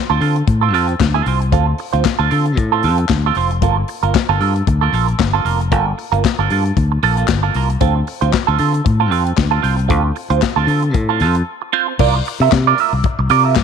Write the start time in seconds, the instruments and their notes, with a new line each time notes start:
0.10 fingered electric bass D2, clean electric guitar C4 F4 A4
0.21 fingered electric bass D3, clean electric guitar C4 F4 A4, open hi-hat
0.36 muted clean electric guitar stroke, closed hi-hat
0.47 fingered electric bass A2, muted clean electric guitar stroke, kick, closed hi-hat
0.61 clean electric guitar C4 F4 A4
0.73 fingered electric bass F2, clean electric guitar C4 F4 A4, open hi-hat
0.88 muted clean electric guitar stroke, closed hi-hat
0.99 fingered electric bass D2, muted clean electric guitar stroke, kick, snare, clap, closed hi-hat
1.14 clean electric guitar C4 F4 A4
1.26 fingered electric bass C2, clean electric guitar C4 F4 C5, open hi-hat
1.40 muted clean electric guitar stroke, closed hi-hat
1.52 fingered electric bass D2, clean electric guitar C4 F4 A4, kick, closed hi-hat
1.67 muted clean electric guitar stroke
1.78 muted clean electric guitar stroke, open hi-hat
1.93 fingered electric bass D2, clean electric guitar C4 F4 C5, closed hi-hat
2.05 kick, snare, clap, closed hi-hat
2.19 fingered electric bass D2, clean electric guitar C4 F4 A4
2.30 fingered electric bass D3, clean electric guitar C4 F4 A4, open hi-hat
2.46 muted clean electric guitar stroke, closed hi-hat
2.57 fingered electric bass A2, muted clean electric guitar stroke, kick, closed hi-hat
2.72 clean electric guitar C4 F4 A4
2.83 fingered electric bass F2, clean electric guitar C4 F4 A4, open hi-hat
2.98 muted clean electric guitar stroke, closed hi-hat
3.09 fingered electric bass D2, muted clean electric guitar stroke, kick, snare, clap, closed hi-hat
3.26 clean electric guitar C4 F4 A4
3.35 fingered electric bass F1, clean electric guitar C4 F4 C5, open hi-hat
3.51 muted clean electric guitar stroke, closed hi-hat
3.62 fingered electric bass G1, clean electric guitar A#3 F4 A4, kick, closed hi-hat
3.77 muted clean electric guitar stroke
3.88 muted clean electric guitar stroke, open hi-hat
4.03 fingered electric bass G1, clean electric guitar A#3 F4 A#4, closed hi-hat
4.14 muted clean electric guitar stroke, kick, snare, clap, closed hi-hat
4.29 fingered electric bass G1, clean electric guitar A#3 F4 A4
4.40 fingered electric bass G2, clean electric guitar A#3 F4 A4, open hi-hat
4.55 muted clean electric guitar stroke, closed hi-hat
4.67 fingered electric bass D2, muted clean electric guitar stroke, kick, closed hi-hat
4.81 clean electric guitar A#3 F4 A4
4.93 fingered electric bass A#1, clean electric guitar A#3 F4 A4, open hi-hat
5.08 muted clean electric guitar stroke, closed hi-hat
5.19 fingered electric bass G1, muted clean electric guitar stroke, kick, snare, clap, closed hi-hat
5.33 clean electric guitar A#3 F4 A4
5.45 fingered electric bass F1, clean electric guitar A#3 F4 A#4, open hi-hat
5.60 muted clean electric guitar stroke, closed hi-hat
5.72 fingered electric bass G1, clean electric guitar A#3 F4 A4, kick, closed hi-hat
5.87 muted clean electric guitar stroke
5.98 muted clean electric guitar stroke, open hi-hat
6.12 fingered electric bass G1, clean electric guitar A#3 F4 A#4, closed hi-hat
6.25 kick, snare, clap, closed hi-hat
6.39 fingered electric bass G1, clean electric guitar A#3 F4 A4
6.50 fingered electric bass G2, clean electric guitar A#3 F4 A4, open hi-hat
6.65 muted clean electric guitar stroke, closed hi-hat
6.77 fingered electric bass D2, muted clean electric guitar stroke, kick, closed hi-hat
6.92 muted clean electric guitar stroke
7.03 fingered electric bass A#1, clean electric guitar A#3 F4 A4, open hi-hat
7.17 clean electric guitar A#3 F4 A4, closed hi-hat
7.28 fingered electric bass G1, muted clean electric guitar stroke, kick, snare, clap, closed hi-hat
7.43 clean electric guitar A#3 F4 A4
7.54 fingered electric bass C2, clean electric guitar A#3 F4 A#4, open hi-hat
7.70 muted clean electric guitar stroke, closed hi-hat
7.81 fingered electric bass D2, clean electric guitar C4 F4 A4, kick, closed hi-hat
7.96 muted clean electric guitar stroke
8.07 muted clean electric guitar stroke, open hi-hat
8.21 fingered electric bass D2, clean electric guitar C4 F4 C5, closed hi-hat
8.32 muted clean electric guitar stroke, kick, snare, clap, closed hi-hat
8.47 fingered electric bass D2, clean electric guitar C4 F4 A4
8.58 fingered electric bass D3, clean electric guitar C4 F4 A4, open hi-hat
8.74 muted clean electric guitar stroke, closed hi-hat
8.85 fingered electric bass A2, muted clean electric guitar stroke, kick, closed hi-hat
9.00 clean electric guitar C4 F4 A4
9.11 fingered electric bass F2, clean electric guitar C4 F4 A4, open hi-hat
9.25 muted clean electric guitar stroke, closed hi-hat
9.37 fingered electric bass D2, muted clean electric guitar stroke, kick, snare, clap, closed hi-hat
9.51 clean electric guitar C4 F4 A4
9.62 fingered electric bass C2, clean electric guitar C4 F4 C5, open hi-hat
9.76 muted clean electric guitar stroke, closed hi-hat
9.88 fingered electric bass D2, clean electric guitar C4 F4 A4, kick, closed hi-hat
10.04 muted clean electric guitar stroke
10.16 muted clean electric guitar stroke, open hi-hat
10.30 fingered electric bass D2, clean electric guitar C4 F4 C5, closed hi-hat
10.42 muted clean electric guitar stroke, kick, snare, clap, closed hi-hat
10.56 fingered electric bass D2, clean electric guitar C4 F4 A4
10.67 fingered electric bass D3, clean electric guitar C4 F4 A4, open hi-hat
10.82 muted clean electric guitar stroke, closed hi-hat
10.94 fingered electric bass A2, muted clean electric guitar stroke, kick, closed hi-hat
11.09 clean electric guitar C4 F4 A4
11.20 fingered electric bass F2, clean electric guitar C4 F4 A4, open hi-hat
11.35 muted clean electric guitar stroke, closed hi-hat
11.62 muted clean electric guitar stroke
11.73 clean electric guitar C4 F4 C5
11.88 muted clean electric guitar stroke
11.99 fingered electric bass C2, clean electric guitar F4 A#4 D5, kick, crash
12.15 muted clean electric guitar stroke
12.25 muted clean electric guitar stroke, open hi-hat
12.40 fingered electric bass C3, clean electric guitar F4 A#4 E5
12.52 fingered electric bass C3, kick, snare, clap, closed hi-hat
12.67 clean electric guitar F4 A#4 D5
12.78 clean electric guitar F4 A#4 E5, open hi-hat
12.93 fingered electric bass C2, muted clean electric guitar stroke
13.04 muted clean electric guitar stroke, kick, closed hi-hat
13.19 fingered electric bass C2, muted clean electric guitar stroke
13.30 fingered electric bass C3, clean electric guitar F4 A#4 D5, open hi-hat
13.45 clean electric guitar F4 A#4 E5
13.56 fingered electric bass G2, muted clean electric guitar stroke, kick, snare, clap, closed hi-hat